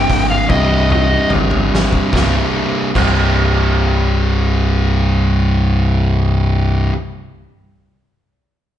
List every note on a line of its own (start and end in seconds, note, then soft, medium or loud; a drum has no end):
0.00 0.47 C2 medium
0.00 0.48 G2 medium
0.00 0.48 C3 loud
0.00 0.25 G5 loud
0.09 0.40 G#1 medium
0.09 kick medium
0.09 open hi-hat medium
0.31 0.49 F5 medium
0.49 1.12 C2 medium
0.49 2.10 C2 medium
0.49 2.11 G2 medium
0.49 2.11 C3 medium
0.49 0.88 D#5 medium
0.49 kick loud
0.49 high tom medium
0.90 1.30 D#5 medium
0.90 mid tom medium
1.30 1.93 G#1 medium
1.30 mid tom medium
1.51 mid tom medium
1.75 snare medium
1.93 kick medium
2.13 2.36 C1 medium
2.13 2.89 C2 medium
2.13 2.89 G2 medium
2.13 2.89 C3 loud
2.13 kick loud
2.13 snare medium
2.95 6.88 C1 medium
2.95 6.92 C2 medium
2.95 6.93 G2 medium
2.95 kick loud
2.95 crash medium
2.99 6.94 C3 loud